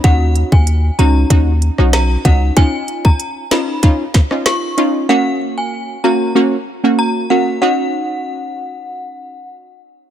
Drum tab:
HH |x-x-x-x-x-x-x-x-|x-x-x-x-x-x-x-x-|----------------|----------------|
SD |-----------ro---|------o---oro---|----------------|----------------|
BD |o--o----o-----o-|o--o----o-o-----|----------------|----------------|